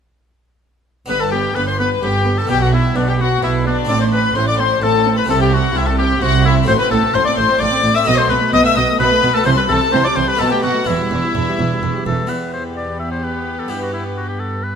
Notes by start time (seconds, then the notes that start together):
1.06 G1 G2 B3 D4 B4 B5
1.20 A4 A5
1.32 B3 G4 G5
1.55 G1 G2 B3 B4 B5
1.67 C5 C6
1.79 B3 B4 B5
2.02 G1 G2 B3 G4 G5
2.26 B3
2.38 A4 A5
2.47 B1 B2 B3 D4 G4 G5
2.61 F#4 F#5
2.73 B3 E4 E5
2.96 B1 B2 B3 D4 D5
3.07 G4 G5
3.19 B3 F#4 F#5
3.42 B1 B2 B3 E4 E5
3.65 B3 D4 D5
3.85 A2 C4 E4 D5 D6
3.89 A1 A2 C4 D5
4.01 C5 C6
4.12 C4 B4 B5
4.35 A1 A2 C4 C5 C6
4.48 D5 D6
4.58 C4 C5 C6
4.81 A1 A2 C4 A4 A5
5.06 C4
5.17 B4 B5
5.24 A3 C4 E4
5.28 C2 C3 C4 A4 A5
5.40 G4 G5
5.52 C4 F#4 F#5
5.73 C2 C3 C4 E4 E5
5.86 A4 A5
5.98 C4 G4 G5
6.21 C2 C3 C4 F#4 F#5
6.44 C4 E4 E5
6.63 A3 C4 F#4
6.67 A1 A2 A3 C5 C6
6.79 C4 B4 B5
6.91 A1 A2 A3 A4 A5
7.03 C4
7.14 A1 A2 A3 C5 C6
7.25 C4 D5 D6
7.37 A1 A2 A3 C5 C6
7.49 C4
7.60 A1 A2 A3 D5 D6
7.71 C4
7.83 A1 A2 A3
7.95 C4 E5 E6
8.03 B2 A3 B3 D#4 F#4 D#5 D#6
8.07 B1 B2
8.18 A3 C5 C6
8.30 B1 B2 B3 B4 B5
8.42 A3
8.53 B1 B2 B3 D#5 D#6
8.65 A3 E5 E6
8.76 B1 B2 B3 D#5 D#6
8.89 A3
9.00 B1 B2 B3 B4 B5
9.12 A3
9.23 B1 B2 B3
9.34 A3 A4 A5
9.44 C2 C3 E3 E4 C5 C6
9.57 G3 B4 B5
9.69 C2 C3 E3 A4 A5
9.81 G3
9.92 C2 C3 E3 C5 C6
10.04 G3 D5 D6
10.16 C2 C3 E3 C5 C6
10.27 G3 B4 B5
10.35 B1 A3 B3 D#4 A4
10.40 B2 A4 A5
10.51 A3 G4 G5
10.63 B1 B2 B3 F#4 F#5
10.75 A3
10.85 E1 E2 E3 B3 E4 E5
11.00 G3
11.11 E1 E2 E3
11.24 G3
11.35 E1 E2 E3
11.48 G3
11.59 E1 E2 E3
11.72 G3
11.83 E1 E2 E3
11.95 G3
12.06 E1 E2 E3 A4
12.19 G3
12.27 E2 B3 E4 G4 B4 B5
12.53 C5
12.76 D5
12.99 E5
13.11 C5
13.24 B4
13.59 A4
13.68 G2 B3 E4 G4
13.82 F#4
13.93 E4
14.17 F#4
14.29 G4
14.40 A4
14.63 B4